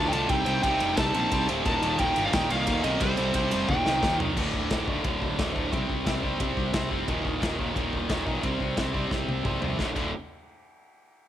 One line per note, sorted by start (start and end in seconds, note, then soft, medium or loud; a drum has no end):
0.00 0.12 D2 loud
0.00 0.13 D2 medium
0.00 0.13 A2 medium
0.00 0.12 D3 loud
0.00 0.11 A5 loud
0.08 0.12 D#4 medium
0.08 0.30 F4 medium
0.08 0.12 G5 medium
0.13 0.29 C2 medium
0.13 0.30 D2 loud
0.13 0.30 A2 loud
0.13 0.29 D3 loud
0.13 0.30 A5 loud
0.13 ride medium
0.29 0.45 C2 loud
0.29 0.48 C3 loud
0.29 0.49 G3 loud
0.29 0.47 C4 loud
0.29 0.62 D#4 medium
0.29 0.61 G5 medium
0.29 kick loud
0.29 ride loud
0.46 0.63 C2 medium
0.46 0.63 C3 medium
0.46 0.65 G3 loud
0.46 0.64 C4 medium
0.46 ride medium
0.63 0.80 C2 loud
0.63 0.81 C3 medium
0.63 0.82 G3 medium
0.63 0.80 C4 loud
0.63 0.95 D#4 medium
0.63 0.97 G5 medium
0.63 kick medium
0.63 ride loud
0.80 0.97 F1 loud
0.80 0.98 C3 medium
0.80 0.99 G3 loud
0.80 0.99 C4 loud
0.80 ride medium
0.97 1.13 C2 loud
0.97 1.15 C3 medium
0.97 1.15 G3 loud
0.97 1.14 C4 medium
0.97 1.45 D#4 medium
0.97 1.45 A5 loud
0.97 kick loud
0.97 snare loud
0.97 ride loud
1.14 1.31 A#1 loud
1.14 1.31 C3 medium
1.14 1.33 G3 loud
1.14 1.32 C4 loud
1.14 ride medium
1.31 1.48 C2 loud
1.31 1.49 C3 medium
1.31 1.49 G3 loud
1.31 1.48 C4 loud
1.31 kick loud
1.31 ride loud
1.49 1.65 D1 medium
1.49 1.65 C3 medium
1.49 1.66 G3 medium
1.49 1.65 C4 loud
1.49 ride medium
1.65 1.81 D#1 loud
1.65 1.82 D#2 loud
1.65 1.82 A#2 loud
1.65 1.82 D#3 loud
1.65 1.97 D#4 medium
1.65 1.99 A5 loud
1.65 kick loud
1.65 ride loud
1.83 1.99 D#1 loud
1.83 1.99 D#2 medium
1.83 2.00 A#2 medium
1.83 2.00 D#3 loud
1.83 ride medium
1.99 2.15 D#1 medium
1.99 2.16 D#2 loud
1.99 2.16 A#2 loud
1.99 2.16 D#3 loud
1.99 2.23 D#4 medium
1.99 2.26 G5 loud
1.99 kick medium
1.99 ride loud
2.16 2.33 G1 loud
2.16 2.32 D#2 loud
2.16 2.33 A#2 loud
2.16 2.33 D#3 loud
2.16 ride medium
2.25 2.33 D4 medium
2.25 2.34 F5 medium
2.33 2.49 D#1 loud
2.33 2.51 D#2 loud
2.33 2.50 A#2 loud
2.33 2.49 D#3 loud
2.33 2.49 D#4 medium
2.33 2.51 G5 loud
2.33 kick loud
2.33 snare loud
2.33 ride loud
2.50 2.66 C2 loud
2.50 2.66 D#2 medium
2.50 2.66 A#2 loud
2.50 2.67 D#3 loud
2.50 2.82 A#3 medium
2.50 2.83 F5 loud
2.50 ride medium
2.67 2.84 D#2 medium
2.67 2.83 D#2 loud
2.67 2.84 A#2 loud
2.67 2.83 D#3 medium
2.67 kick medium
2.67 ride loud
2.83 3.00 B1 loud
2.83 3.01 D#2 medium
2.83 3.01 A#2 loud
2.83 3.00 D#3 loud
2.83 2.99 C4 medium
2.83 3.02 D#5 medium
2.83 ride medium
3.00 3.17 C2 loud
3.00 3.17 C3 loud
3.00 3.64 G3 medium
3.00 3.17 G3 loud
3.00 3.17 C4 loud
3.00 3.71 C5 medium
3.00 kick loud
3.00 ride loud
3.17 3.34 C2 medium
3.17 3.34 C3 medium
3.17 3.35 G3 medium
3.17 3.35 C4 loud
3.17 ride medium
3.34 3.51 C2 loud
3.34 3.52 C3 medium
3.34 3.52 G3 loud
3.34 3.51 C4 loud
3.34 kick medium
3.34 ride loud
3.51 3.68 F1 medium
3.51 3.69 C3 medium
3.51 3.69 G3 loud
3.51 3.68 C4 loud
3.51 ride medium
3.68 3.85 D#1 loud
3.68 3.86 D#2 medium
3.68 3.86 A#2 loud
3.68 3.85 D#3 loud
3.68 4.16 D#4 medium
3.68 4.16 G5 medium
3.68 kick loud
3.68 high tom medium
3.86 4.02 C2 loud
3.86 4.02 D#2 medium
3.86 4.02 A#2 loud
3.86 4.03 D#3 loud
3.86 snare medium
4.03 4.19 D#2 loud
4.03 4.19 D#2 medium
4.03 4.19 A#2 medium
4.03 4.19 D#3 medium
4.03 kick loud
4.03 snare loud
4.20 4.36 C2 medium
4.20 4.36 D#2 medium
4.20 4.36 A#2 loud
4.20 4.36 D#3 loud
4.20 floor tom loud
4.37 4.51 D1 medium
4.37 4.70 D2 medium
4.37 4.71 A2 loud
4.37 4.71 D3 loud
4.37 kick loud
4.37 crash loud
4.54 4.68 D1 medium
4.54 kick medium
4.71 4.98 D1 medium
4.71 4.87 D2 medium
4.71 4.87 A2 medium
4.71 4.86 D3 loud
4.71 kick loud
4.71 snare loud
4.71 ride bell medium
4.88 5.04 D2 medium
4.88 5.04 A2 medium
4.88 5.04 D3 medium
4.88 kick medium
5.04 5.19 D1 medium
5.04 5.38 D2 medium
5.04 5.38 A2 medium
5.04 5.38 D3 medium
5.04 kick loud
5.04 ride bell medium
5.22 5.36 D1 medium
5.22 kick medium
5.39 5.52 D1 medium
5.39 5.55 D2 medium
5.39 5.55 A2 medium
5.39 5.55 D3 medium
5.39 kick loud
5.39 snare loud
5.39 ride bell medium
5.56 5.74 D1 medium
5.56 5.72 D2 medium
5.56 5.72 A2 medium
5.56 5.72 D3 medium
5.56 kick medium
5.73 5.86 C2 medium
5.73 6.06 C3 medium
5.73 6.07 G3 medium
5.73 6.07 C4 loud
5.73 kick loud
5.73 ride bell medium
5.90 6.03 C2 medium
5.90 kick medium
6.06 6.34 C2 medium
6.06 6.23 C3 medium
6.06 6.24 G3 medium
6.06 6.22 C4 medium
6.06 kick loud
6.06 snare loud
6.06 ride bell medium
6.23 6.38 C3 medium
6.23 6.40 G3 medium
6.23 6.39 C4 medium
6.23 kick medium
6.39 6.54 C2 loud
6.39 6.72 C3 medium
6.39 6.74 G3 medium
6.39 6.73 C4 loud
6.39 kick loud
6.39 ride bell medium
6.57 6.71 C2 medium
6.57 kick medium
6.73 6.88 C2 medium
6.73 6.91 C3 medium
6.73 6.91 G3 medium
6.73 6.90 C4 medium
6.73 kick loud
6.73 snare loud
6.73 ride bell medium
6.91 7.05 F1 medium
6.91 7.07 C3 medium
6.91 7.09 G3 medium
6.91 7.07 C4 loud
6.91 kick medium
7.08 7.22 D#1 loud
7.08 7.40 D#2 medium
7.08 7.41 A#2 medium
7.08 7.41 D#3 loud
7.08 kick loud
7.08 ride bell medium
7.25 7.39 D#1 medium
7.25 kick medium
7.42 7.70 D#1 medium
7.42 7.59 D#2 medium
7.42 7.58 A#2 medium
7.42 7.58 D#3 medium
7.42 kick loud
7.42 snare loud
7.42 ride bell medium
7.59 7.74 D#2 medium
7.59 7.75 A#2 medium
7.59 7.75 D#3 medium
7.59 kick medium
7.75 7.90 D#1 medium
7.75 8.08 D#2 medium
7.75 8.08 A#2 loud
7.75 8.09 D#3 loud
7.75 kick loud
7.75 ride bell medium
7.93 8.07 D#1 medium
7.93 kick medium
8.09 8.23 D#1 medium
8.09 8.26 D#2 medium
8.09 8.26 A#2 medium
8.09 8.25 D#3 medium
8.09 kick loud
8.09 snare loud
8.09 ride bell medium
8.26 8.40 B1 medium
8.26 8.43 D#2 medium
8.26 8.43 A#2 medium
8.26 8.42 D#3 medium
8.26 kick medium
8.43 8.57 C2 medium
8.43 8.76 C3 medium
8.43 8.77 G3 medium
8.43 8.77 C4 loud
8.43 kick medium
8.43 ride bell medium
8.60 8.74 C2 medium
8.60 kick medium
8.77 9.05 C2 medium
8.77 8.93 C3 medium
8.77 8.93 G3 medium
8.77 8.92 C4 medium
8.77 kick medium
8.77 snare loud
8.77 ride bell medium
8.93 9.09 C3 medium
8.93 9.10 G3 medium
8.93 9.11 C4 medium
8.93 kick medium
9.11 9.25 C2 medium
9.11 9.43 C3 medium
9.11 9.44 G3 medium
9.11 9.45 C4 medium
9.11 kick loud
9.11 snare medium
9.28 9.42 C2 medium
9.28 high tom medium
9.45 9.59 C2 medium
9.45 9.61 C3 medium
9.45 9.61 G3 medium
9.45 9.60 C4 medium
9.45 kick loud
9.45 mid tom medium
9.61 9.76 C2 medium
9.61 9.78 C3 medium
9.61 9.78 G3 medium
9.61 9.78 C4 medium
9.61 floor tom medium
9.78 9.88 D1 medium
9.78 9.89 D2 medium
9.78 9.89 A2 medium
9.78 9.89 D3 medium
9.78 kick medium
9.78 snare medium
9.96 10.12 D1 medium
9.96 10.09 D2 medium
9.96 10.09 A2 medium
9.96 10.10 D3 loud
9.96 kick medium
9.96 crash medium